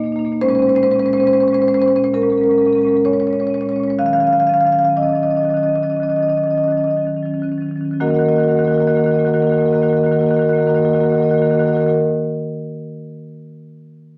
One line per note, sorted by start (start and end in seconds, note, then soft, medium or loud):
0.00 0.07 B2 medium
0.00 0.06 A#3 medium
0.00 0.12 D#4 medium
0.06 0.16 B2 medium
0.06 0.16 A#3 soft
0.12 0.27 B2 medium
0.12 0.25 A#3 medium
0.12 0.19 D#4 soft
0.19 0.26 D#4 medium
0.25 0.37 B2 medium
0.25 0.32 A#3 soft
0.25 0.33 D#4 soft
0.32 0.37 A#3 medium
0.32 0.37 D#4 medium
0.41 0.50 A#2 medium
0.41 0.50 G#3 medium
0.41 0.50 C#4 medium
0.41 0.48 C5 loud
0.48 0.60 A#2 medium
0.48 0.59 G#3 soft
0.48 0.59 C#4 medium
0.48 0.55 C5 medium
0.55 0.67 C#4 medium
0.55 0.62 C5 medium
0.59 0.68 A#2 medium
0.59 0.67 G#3 soft
0.59 0.69 C5 medium
0.67 0.78 A#2 medium
0.67 0.75 G#3 soft
0.67 0.75 C#4 soft
0.67 0.76 C5 medium
0.75 0.86 A#2 medium
0.75 0.83 G#3 soft
0.75 0.84 C#4 medium
0.75 0.83 C5 medium
0.83 0.95 A#2 medium
0.83 0.91 G#3 soft
0.83 0.93 C#4 soft
0.83 0.91 C5 loud
0.91 1.00 G#3 soft
0.91 1.03 C#4 soft
0.91 0.99 C5 medium
0.95 1.05 A#2 medium
0.95 1.06 C5 loud
1.00 1.08 G#3 soft
1.00 1.11 C#4 medium
1.05 1.13 A#2 medium
1.05 1.17 G#3 medium
1.05 1.13 C5 medium
1.11 1.24 A#2 medium
1.11 1.18 C#4 soft
1.11 1.20 C5 medium
1.17 1.25 G#3 soft
1.17 1.26 C#4 soft
1.17 1.27 C5 medium
1.24 1.33 A#2 medium
1.24 1.33 G#3 medium
1.24 1.34 C#4 medium
1.24 1.33 C5 loud
1.33 1.43 A#2 medium
1.33 1.42 G#3 soft
1.33 1.43 C#4 soft
1.33 1.40 C5 medium
1.40 1.53 A#2 medium
1.40 1.50 G#3 soft
1.40 1.52 C#4 medium
1.40 1.48 C5 medium
1.48 1.59 G#3 soft
1.48 1.54 C5 medium
1.52 1.61 A#2 medium
1.52 1.61 C#4 medium
1.52 1.62 C5 medium
1.59 1.69 A#2 medium
1.59 1.67 G#3 soft
1.59 1.71 C#4 soft
1.59 1.68 C5 medium
1.67 1.77 A#2 medium
1.67 1.75 G#3 soft
1.67 1.79 C#4 soft
1.67 1.74 C5 medium
1.74 1.86 A#2 medium
1.74 1.82 G#3 medium
1.74 1.82 C5 medium
1.79 1.90 G#3 soft
1.79 1.88 C#4 medium
1.79 1.88 C5 loud
1.86 1.95 A#2 medium
1.86 1.96 C#4 soft
1.86 1.96 C5 medium
1.90 1.98 G#3 medium
1.95 2.04 A#2 medium
1.95 2.10 G#3 soft
1.95 2.05 C#4 medium
1.95 2.04 C5 medium
2.04 2.11 A#2 medium
2.04 2.11 C#4 soft
2.04 2.11 C5 medium
2.14 2.23 A#2 medium
2.14 2.23 G#3 medium
2.14 2.22 C#4 medium
2.14 2.22 A#4 medium
2.22 2.32 A#2 medium
2.22 2.32 G#3 soft
2.22 2.30 C#4 soft
2.22 2.30 A#4 medium
2.30 2.42 A#2 medium
2.30 2.42 G#3 soft
2.30 2.38 C#4 soft
2.30 2.38 A#4 medium
2.38 2.51 G#3 soft
2.38 2.46 C#4 soft
2.38 2.44 A#4 medium
2.42 2.49 A#2 soft
2.42 2.53 C#4 soft
2.42 2.51 A#4 medium
2.49 2.58 A#2 medium
2.49 2.61 G#3 soft
2.49 2.60 C#4 soft
2.49 2.58 A#4 medium
2.58 2.67 A#2 soft
2.58 2.69 G#3 soft
2.58 2.68 C#4 soft
2.58 2.65 A#4 medium
2.65 2.76 A#2 medium
2.65 2.75 C#4 soft
2.65 2.73 A#4 medium
2.69 2.78 G#3 soft
2.69 2.81 A#4 medium
2.75 2.84 A#2 soft
2.75 2.87 G#3 soft
2.75 2.83 C#4 soft
2.81 2.93 A#2 medium
2.81 2.91 C#4 soft
2.81 2.88 A#4 medium
2.87 2.95 G#3 soft
2.87 2.97 A#4 medium
2.91 3.01 A#2 medium
2.91 3.01 C#4 soft
2.95 3.01 G#3 soft
2.95 3.01 A#4 medium
3.04 3.13 A#2 medium
3.04 3.13 G#3 soft
3.04 3.12 C#4 soft
3.04 3.13 C#5 medium
3.12 3.22 A#2 soft
3.12 3.22 G#3 soft
3.12 3.20 C#4 soft
3.12 3.20 C#5 medium
3.20 3.31 A#2 soft
3.20 3.30 G#3 soft
3.20 3.27 C#4 soft
3.20 3.27 C#5 medium
3.27 3.41 A#2 soft
3.27 3.39 G#3 soft
3.27 3.34 C#4 soft
3.27 3.33 C#5 medium
3.33 3.43 C#4 soft
3.33 3.40 C#5 medium
3.39 3.52 A#2 soft
3.39 3.47 G#3 soft
3.39 3.47 C#5 medium
3.43 3.55 G#3 soft
3.43 3.50 C#4 soft
3.47 3.58 C#4 soft
3.47 3.54 C#5 medium
3.52 3.62 A#2 soft
3.52 3.63 G#3 soft
3.52 3.61 C#5 medium
3.58 3.71 A#2 soft
3.58 3.66 C#4 soft
3.58 3.69 C#5 medium
3.63 3.72 G#3 soft
3.63 3.73 C#4 soft
3.69 3.79 A#2 soft
3.69 3.80 G#3 soft
3.69 3.76 C#5 medium
3.73 3.81 C#4 soft
3.73 3.84 C#5 medium
3.79 3.89 A#2 soft
3.79 3.88 G#3 soft
3.79 3.90 C#4 soft
3.84 3.90 C#5 medium
3.88 3.96 A#2 soft
3.88 3.96 G#3 soft
3.88 3.96 C#4 soft
3.88 3.95 C#5 medium
3.98 4.07 D#3 medium
3.98 4.08 F#3 soft
3.98 4.08 C#4 soft
3.98 4.06 F5 medium
4.06 4.14 D#3 soft
4.06 4.16 F#3 soft
4.06 4.15 C#4 soft
4.06 4.13 F5 medium
4.13 4.22 D#3 medium
4.13 4.24 F#3 soft
4.13 4.24 C#4 soft
4.13 4.20 F5 medium
4.20 4.31 D#3 soft
4.20 4.33 F#3 soft
4.20 4.32 C#4 soft
4.20 4.27 F5 medium
4.27 4.33 F5 medium
4.31 4.39 D#3 medium
4.31 4.41 F#3 soft
4.31 4.41 C#4 soft
4.31 4.40 F5 medium
4.39 4.49 D#3 soft
4.39 4.49 F#3 soft
4.39 4.49 C#4 soft
4.39 4.47 F5 medium
4.47 4.56 D#3 soft
4.47 4.57 F#3 soft
4.47 4.57 C#4 soft
4.47 4.54 F5 medium
4.54 4.65 D#3 soft
4.54 4.66 F#3 soft
4.54 4.66 C#4 soft
4.54 4.61 F5 medium
4.61 4.67 F5 medium
4.65 4.73 D#3 medium
4.65 4.76 F#3 soft
4.65 4.73 C#4 soft
4.65 4.72 F5 medium
4.72 4.82 D#3 soft
4.72 4.84 F#3 soft
4.72 4.81 C#4 soft
4.72 4.79 F5 medium
4.79 4.94 D#3 medium
4.79 4.90 C#4 soft
4.79 4.84 F5 medium
4.84 4.94 F#3 soft
4.84 4.93 F5 medium
4.90 4.94 C#4 soft
4.97 5.06 D#3 medium
4.97 5.05 F#3 soft
4.97 5.04 C#4 soft
4.97 5.03 D#5 medium
5.03 5.15 D#3 soft
5.03 5.13 F#3 soft
5.03 5.12 C#4 soft
5.03 5.09 D#5 medium
5.09 5.20 C#4 soft
5.09 5.15 D#5 medium
5.13 5.26 D#3 soft
5.13 5.22 F#3 soft
5.13 5.23 D#5 medium
5.20 5.31 F#3 soft
5.20 5.29 C#4 soft
5.20 5.31 D#5 medium
5.26 5.36 D#3 soft
5.26 5.37 C#4 soft
5.31 5.41 F#3 soft
5.31 5.37 D#5 medium
5.36 5.45 D#3 soft
5.36 5.45 C#4 soft
5.36 5.43 D#5 medium
5.41 5.49 F#3 soft
5.41 5.50 D#5 medium
5.45 5.54 D#3 soft
5.45 5.53 C#4 soft
5.49 5.57 F#3 soft
5.49 5.57 D#5 medium
5.53 5.64 D#3 soft
5.53 5.61 C#4 soft
5.53 5.63 D#5 medium
5.57 5.66 F#3 soft
5.57 5.69 C#4 soft
5.63 5.73 D#3 soft
5.63 5.75 F#3 soft
5.63 5.69 D#5 medium
5.69 5.77 C#4 soft
5.69 5.76 D#5 medium
5.73 5.82 D#3 soft
5.73 5.84 F#3 soft
5.73 5.83 D#5 medium
5.77 5.86 C#4 soft
5.82 5.91 D#3 soft
5.82 5.93 F#3 soft
5.82 5.94 C#4 soft
5.82 5.90 D#5 medium
5.90 6.00 D#3 soft
5.90 6.02 F#3 soft
5.90 6.02 C#4 soft
5.90 5.96 D#5 medium
5.96 6.09 D#3 soft
5.96 6.03 D#5 medium
6.02 6.11 F#3 soft
6.02 6.10 C#4 soft
6.02 6.10 D#5 medium
6.09 6.19 D#3 soft
6.09 6.21 F#3 soft
6.09 6.18 C#4 soft
6.09 6.16 D#5 medium
6.16 6.28 D#3 soft
6.16 6.26 C#4 soft
6.16 6.23 D#5 medium
6.21 6.29 F#3 soft
6.21 6.30 D#5 medium
6.26 6.38 D#3 soft
6.26 6.37 F#3 soft
6.26 6.34 C#4 soft
6.26 6.37 D#5 medium
6.34 6.46 F#3 soft
6.34 6.43 C#4 soft
6.34 6.44 D#5 medium
6.38 6.47 D#3 soft
6.43 6.55 F#3 soft
6.43 6.51 C#4 soft
6.43 6.51 D#5 medium
6.47 6.57 D#3 soft
6.47 6.57 D#5 medium
6.51 6.64 F#3 soft
6.51 6.61 C#4 soft
6.57 6.68 D#3 soft
6.57 6.68 C#4 soft
6.57 6.64 D#5 medium
6.64 6.77 D#3 soft
6.64 6.72 F#3 soft
6.64 6.71 D#5 medium
6.68 6.77 C#4 soft
6.68 6.77 D#5 medium
6.72 6.81 F#3 soft
6.77 6.88 D#3 soft
6.77 6.90 F#3 soft
6.77 6.86 C#4 soft
6.77 6.84 D#5 medium
6.84 6.97 D#3 soft
6.84 6.94 C#4 soft
6.84 6.91 D#5 medium
6.90 6.97 F#3 soft
6.90 6.93 D#5 medium
6.94 7.07 D#3 soft
6.94 7.06 F#3 soft
6.94 7.01 C#4 soft
7.01 7.09 C#4 soft
7.06 7.16 D#3 soft
7.06 7.14 F#3 soft
7.06 7.18 C#4 soft
7.14 7.25 D#3 soft
7.14 7.23 F#3 soft
7.14 7.26 C#4 soft
7.23 7.34 D#3 soft
7.23 7.31 F#3 soft
7.23 7.34 C#4 soft
7.31 7.42 D#3 soft
7.31 7.40 F#3 soft
7.31 7.43 C#4 soft
7.40 7.52 D#3 soft
7.40 7.49 F#3 soft
7.40 7.52 C#4 soft
7.49 7.62 D#3 soft
7.49 7.58 F#3 soft
7.49 7.61 C#4 soft
7.58 7.71 D#3 soft
7.58 7.66 F#3 soft
7.58 7.69 C#4 soft
7.66 7.76 F#3 soft
7.66 7.77 C#4 soft
7.71 7.81 D#3 soft
7.76 7.84 F#3 soft
7.76 7.85 C#4 soft
7.81 7.91 D#3 soft
7.81 7.93 F#3 soft
7.85 7.94 C#4 soft
7.91 7.97 D#3 soft
7.91 7.97 F#3 soft
7.91 7.97 C#4 soft
8.00 8.11 D#3 medium
8.00 8.08 A#3 medium
8.00 8.08 F#4 medium
8.00 8.09 A#4 medium
8.00 8.07 D#5 medium
8.00 8.07 F#5 medium
8.07 8.19 D#3 medium
8.07 8.16 A#3 soft
8.07 8.15 F#4 soft
8.07 8.17 A#4 soft
8.07 8.15 D#5 soft
8.07 8.14 F#5 soft
8.14 8.24 A#3 medium
8.14 8.21 F#4 medium
8.14 8.25 A#4 medium
8.14 8.21 D#5 soft
8.14 8.20 F#5 soft
8.19 8.29 D#3 medium
8.19 8.28 F#4 medium
8.19 8.29 D#5 soft
8.19 8.26 F#5 soft
8.24 8.32 A#3 soft
8.24 8.32 A#4 soft
8.24 8.34 F#5 soft
8.28 8.38 D#3 medium
8.28 8.40 A#3 medium
8.28 8.36 F#4 medium
8.28 8.40 A#4 soft
8.28 8.36 D#5 soft
8.34 8.44 F#4 soft
8.34 8.43 D#5 soft
8.34 8.41 F#5 soft
8.38 8.49 D#3 medium
8.38 8.48 A#3 soft
8.38 8.48 A#4 soft
8.38 8.48 F#5 soft
8.43 8.51 F#4 medium
8.43 8.51 D#5 soft
8.48 8.59 D#3 medium
8.48 8.57 A#3 soft
8.48 8.59 F#4 medium
8.48 8.57 A#4 medium
8.48 8.58 D#5 soft
8.48 8.55 F#5 soft
8.55 8.68 D#3 medium
8.55 8.65 A#3 soft
8.55 8.64 A#4 soft
8.55 8.65 D#5 medium
8.55 8.62 F#5 soft
8.59 8.67 F#4 medium
8.59 8.69 F#5 soft
8.64 8.78 D#3 medium
8.64 8.73 A#3 medium
8.64 8.74 F#4 soft
8.64 8.73 A#4 soft
8.64 8.72 D#5 soft
8.69 8.80 A#3 soft
8.69 8.81 A#4 medium
8.69 8.79 D#5 soft
8.69 8.76 F#5 soft
8.74 8.88 D#3 medium
8.74 8.82 F#4 medium
8.74 8.84 F#5 soft
8.79 8.88 A#3 medium
8.79 8.89 F#4 soft
8.79 8.88 A#4 medium
8.79 8.87 D#5 soft
8.84 8.97 D#3 medium
8.84 8.96 A#4 soft
8.84 8.94 D#5 soft
8.84 8.91 F#5 soft
8.88 8.95 A#3 soft
8.88 8.96 F#4 medium
8.88 8.99 F#5 soft
8.94 9.06 D#3 medium
8.94 9.04 A#3 medium
8.94 9.04 F#4 soft
8.94 9.04 A#4 soft
8.94 9.00 D#5 soft
8.99 9.07 D#5 soft
8.99 9.06 F#5 soft
9.04 9.16 D#3 medium
9.04 9.11 A#3 medium
9.04 9.11 F#4 medium
9.04 9.11 A#4 soft
9.04 9.14 D#5 soft
9.04 9.13 F#5 soft
9.11 9.19 A#3 soft
9.11 9.19 F#4 soft
9.11 9.20 A#4 soft
9.11 9.21 D#5 soft
9.11 9.20 F#5 soft
9.16 9.25 D#3 medium
9.16 9.27 A#3 soft
9.16 9.26 F#4 soft
9.16 9.27 F#5 soft
9.20 9.27 A#4 soft
9.20 9.28 D#5 soft
9.25 9.34 D#3 medium
9.25 9.34 A#3 medium
9.25 9.33 F#4 medium
9.25 9.35 A#4 soft
9.25 9.36 D#5 soft
9.25 9.34 F#5 soft
9.33 9.44 D#3 medium
9.33 9.42 A#3 soft
9.33 9.40 F#4 medium
9.33 9.42 A#4 soft
9.33 9.43 D#5 soft
9.33 9.40 F#5 soft
9.40 9.52 D#3 medium
9.40 9.50 A#3 medium
9.40 9.47 F#4 soft
9.40 9.49 A#4 soft
9.40 9.49 D#5 soft
9.40 9.47 F#5 medium
9.47 9.58 A#3 soft
9.47 9.54 F#4 medium
9.47 9.58 A#4 soft
9.47 9.57 D#5 soft
9.47 9.54 F#5 soft
9.52 9.62 D#3 medium
9.52 9.61 F#4 medium
9.52 9.61 F#5 soft
9.57 9.66 A#3 medium
9.57 9.68 F#4 medium
9.57 9.66 A#4 medium
9.57 9.64 D#5 soft
9.57 9.68 F#5 soft
9.62 9.73 D#3 medium
9.62 9.74 A#3 soft
9.62 9.73 A#4 soft
9.62 9.71 D#5 soft
9.68 9.75 F#4 soft
9.68 9.78 D#5 soft
9.68 9.74 F#5 soft
9.73 9.83 D#3 medium
9.73 9.82 A#3 medium
9.73 9.82 F#4 medium
9.73 9.80 A#4 medium
9.73 9.81 F#5 soft
9.78 9.89 A#3 soft
9.78 9.88 A#4 soft
9.78 9.85 D#5 soft
9.78 9.89 F#5 soft
9.82 9.93 D#3 medium
9.82 9.90 F#4 medium
9.82 9.93 D#5 soft
9.88 9.98 A#3 medium
9.88 9.97 F#4 medium
9.88 9.97 A#4 medium
9.88 9.96 F#5 soft
9.93 10.04 D#3 medium
9.93 10.05 F#4 soft
9.93 9.99 D#5 soft
9.93 10.03 F#5 soft
9.97 10.06 A#3 soft
9.97 10.05 A#4 soft
9.97 10.06 D#5 soft
10.03 10.11 D#3 medium
10.03 10.13 A#3 medium
10.03 10.12 F#4 medium
10.03 10.13 A#4 soft
10.03 10.12 D#5 soft
10.03 10.10 F#5 soft
10.10 10.21 D#3 medium
10.10 10.21 A#3 soft
10.10 10.19 F#4 soft
10.10 10.21 A#4 soft
10.10 10.20 D#5 soft
10.10 10.16 F#5 soft
10.16 10.26 F#4 medium
10.16 10.23 F#5 soft
10.20 10.31 D#3 medium
10.20 10.29 A#3 medium
10.20 10.29 A#4 soft
10.20 10.27 D#5 soft
10.20 10.30 F#5 soft
10.26 10.36 A#3 soft
10.26 10.34 F#4 soft
10.26 10.37 A#4 soft
10.26 10.33 D#5 soft
10.26 10.36 F#5 soft
10.31 10.39 D#3 medium
10.31 10.42 F#4 medium
10.31 10.41 D#5 soft
10.36 10.49 D#3 medium
10.36 10.44 A#3 soft
10.36 10.43 A#4 medium
10.36 10.42 F#5 medium
10.41 10.53 A#3 soft
10.41 10.49 F#4 soft
10.41 10.50 A#4 soft
10.41 10.48 D#5 soft
10.41 10.50 F#5 soft
10.48 10.58 D#3 medium
10.48 10.56 F#4 medium
10.48 10.58 A#4 medium
10.48 10.55 D#5 soft
10.48 10.57 F#5 soft
10.53 10.60 A#3 medium
10.53 10.62 F#4 soft
10.53 10.62 D#5 soft
10.57 10.67 D#3 medium
10.57 10.68 A#3 soft
10.57 10.66 A#4 soft
10.57 10.63 F#5 soft
10.62 10.69 F#4 medium
10.62 10.74 A#4 medium
10.62 10.69 D#5 soft
10.62 10.70 F#5 soft
10.67 10.75 D#3 medium
10.67 10.76 A#3 medium
10.67 10.77 F#4 soft
10.67 10.75 D#5 soft
10.67 10.77 F#5 soft
10.74 10.85 D#3 medium
10.74 10.85 A#3 soft
10.74 10.85 F#4 medium
10.74 10.82 A#4 soft
10.74 10.82 D#5 soft
10.74 10.84 F#5 soft
10.82 10.94 D#3 medium
10.82 10.94 A#3 medium
10.82 10.93 F#4 soft
10.82 10.91 A#4 medium
10.82 10.88 D#5 soft
10.82 10.91 F#5 soft
10.88 10.98 A#4 soft
10.88 10.96 D#5 soft
10.88 10.98 F#5 soft
10.93 11.03 D#3 medium
10.93 11.01 A#3 soft
10.93 11.01 F#4 medium
10.93 11.03 D#5 soft
10.98 11.09 A#3 medium
10.98 11.09 F#4 medium
10.98 11.06 A#4 soft
10.98 11.05 F#5 soft
11.03 11.12 D#3 medium
11.03 11.14 A#4 soft
11.03 11.10 D#5 soft
11.03 11.13 F#5 medium
11.09 11.21 D#3 medium
11.09 11.18 A#3 soft
11.09 11.15 F#4 medium
11.09 11.17 D#5 soft
11.13 11.22 F#4 medium
11.13 11.22 A#4 medium
11.13 11.20 F#5 soft
11.17 11.26 A#3 medium
11.17 11.24 D#5 soft
11.17 11.25 F#5 soft
11.21 11.31 D#3 medium
11.21 11.30 F#4 medium
11.21 11.30 A#4 soft
11.21 11.31 D#5 soft
11.21 11.31 F#5 soft
11.26 11.34 A#3 soft
11.26 11.38 F#4 soft
11.30 11.42 D#3 medium
11.30 11.42 A#3 soft
11.30 11.39 A#4 soft
11.30 11.38 D#5 soft
11.30 11.38 F#5 soft
11.38 11.46 F#4 medium
11.38 11.47 A#4 soft
11.38 11.46 D#5 soft
11.38 11.45 F#5 soft
11.42 11.51 D#3 medium
11.42 11.50 A#3 soft
11.42 11.53 F#4 soft
11.42 11.52 F#5 soft
11.46 11.58 A#3 soft
11.46 11.55 A#4 medium
11.46 11.53 D#5 soft
11.51 11.59 D#3 medium
11.51 11.60 F#4 medium
11.51 11.63 A#4 soft
11.51 11.60 D#5 soft
11.51 11.59 F#5 soft
11.58 11.68 D#3 medium
11.58 11.66 A#3 soft
11.58 11.68 F#4 soft
11.58 11.67 D#5 soft
11.58 11.66 F#5 soft
11.63 11.73 A#3 soft
11.63 11.69 A#4 medium
11.63 11.73 F#5 soft
11.67 11.77 D#3 medium
11.67 11.75 F#4 medium
11.67 11.76 A#4 soft
11.67 11.73 D#5 soft
11.73 11.80 A#3 soft
11.73 11.82 F#4 soft
11.73 11.83 A#4 medium
11.73 11.81 D#5 soft
11.73 11.81 F#5 soft
11.77 11.87 D#3 medium
11.77 11.88 A#3 soft
11.77 11.87 F#5 soft
11.81 11.89 F#4 medium
11.81 11.90 A#4 medium
11.81 11.88 D#5 soft
11.87 11.99 D#3 medium
11.87 11.99 A#3 soft
11.87 11.99 F#4 medium
11.87 11.99 A#4 medium
11.87 11.95 D#5 soft
11.87 11.94 F#5 soft
11.94 11.99 D#5 soft
11.94 11.99 F#5 soft